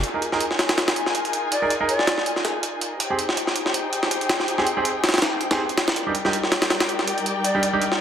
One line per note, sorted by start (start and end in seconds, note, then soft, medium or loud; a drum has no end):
0.03 2.98 D#4 medium
0.03 2.98 F4 medium
0.03 2.98 G#4 medium
0.03 2.98 A#4 medium
0.03 2.98 G#5 medium
0.03 closed hi-hat medium
0.14 0.20 D#4 medium
0.14 0.20 G#4 medium
0.14 0.20 A#4 medium
0.22 closed hi-hat medium
0.32 0.42 D#4 medium
0.32 0.42 G#4 medium
0.32 0.42 A#4 medium
0.32 snare soft
0.40 closed hi-hat medium
0.51 snare soft
0.59 snare medium
0.59 closed hi-hat medium
0.69 snare medium
0.69 closed hi-hat medium
0.78 snare loud
0.78 closed hi-hat medium
0.88 snare loud
0.88 closed hi-hat medium
0.96 closed hi-hat medium
1.06 snare soft
1.15 closed hi-hat medium
1.25 closed hi-hat soft
1.33 closed hi-hat medium
1.52 1.74 D5 medium
1.52 closed hi-hat medium
1.62 1.68 D#4 medium
1.62 1.68 G#4 medium
1.62 1.68 A#4 medium
1.70 closed hi-hat medium
1.80 1.90 D#4 medium
1.80 1.90 G#4 medium
1.80 1.90 A#4 medium
1.89 2.41 D5 medium
1.89 closed hi-hat medium
1.99 snare soft
2.07 snare medium
2.07 closed hi-hat medium
2.18 snare soft
2.26 closed hi-hat medium
2.36 snare soft
2.45 snare soft
2.45 closed hi-hat medium
2.63 closed hi-hat medium
2.81 closed hi-hat medium
3.00 5.94 D#4 medium
3.00 5.94 G4 medium
3.00 5.94 G#4 medium
3.00 5.94 C5 medium
3.00 5.94 G5 medium
3.00 closed hi-hat medium
3.10 3.16 C4 medium
3.10 3.16 G4 medium
3.10 3.16 G#4 medium
3.19 closed hi-hat medium
3.29 snare soft
3.37 closed hi-hat medium
3.47 snare soft
3.56 closed hi-hat medium
3.66 snare soft
3.74 closed hi-hat medium
3.93 closed hi-hat medium
4.03 snare soft
4.11 closed hi-hat medium
4.21 closed hi-hat soft
4.29 snare medium
4.29 closed hi-hat medium
4.40 snare soft
4.48 closed hi-hat medium
4.58 4.64 C4 medium
4.58 4.64 G4 medium
4.58 4.64 G#4 medium
4.58 snare soft
4.67 closed hi-hat medium
4.77 4.86 C4 medium
4.77 4.86 G4 medium
4.77 4.86 G#4 loud
4.85 closed hi-hat medium
5.04 snare medium
5.04 closed hi-hat medium
5.09 snare medium
5.09 closed hi-hat medium
5.14 snare medium
5.14 closed hi-hat medium
5.18 snare medium
5.18 closed hi-hat medium
5.22 snare loud
5.22 closed hi-hat medium
5.41 closed hi-hat medium
5.51 5.60 C4 medium
5.51 5.60 G4 medium
5.51 5.60 G#4 medium
5.51 snare loud
5.51 closed hi-hat medium
5.69 closed hi-hat medium
5.78 snare medium
5.78 closed hi-hat medium
5.88 snare loud
5.88 closed hi-hat medium
5.96 8.01 G3 medium
5.96 8.01 D#4 medium
5.96 8.01 G4 medium
5.96 8.01 A#4 medium
5.96 8.01 D5 medium
5.96 8.01 G5 medium
5.96 closed hi-hat medium
6.07 6.12 G3 medium
6.07 6.12 D4 medium
6.07 6.12 D#4 medium
6.07 6.12 G4 medium
6.15 closed hi-hat medium
6.25 6.34 G3 medium
6.25 6.34 D4 medium
6.25 6.34 D#4 medium
6.25 6.34 G4 medium
6.25 snare soft
6.33 closed hi-hat medium
6.44 snare soft
6.52 snare loud
6.52 closed hi-hat medium
6.62 snare loud
6.62 closed hi-hat medium
6.70 snare medium
6.70 closed hi-hat medium
6.80 snare loud
6.80 closed hi-hat medium
6.89 closed hi-hat medium
6.99 snare soft
7.08 closed hi-hat medium
7.18 closed hi-hat soft
7.26 closed hi-hat medium
7.44 7.67 D5 medium
7.44 closed hi-hat medium
7.55 7.60 G3 medium
7.55 7.60 D4 medium
7.55 7.60 D#4 medium
7.55 7.60 G4 medium
7.63 closed hi-hat medium
7.73 7.82 G3 medium
7.73 7.82 D4 medium
7.73 7.82 D#4 medium
7.73 7.82 G4 loud
7.82 closed hi-hat medium
7.92 snare soft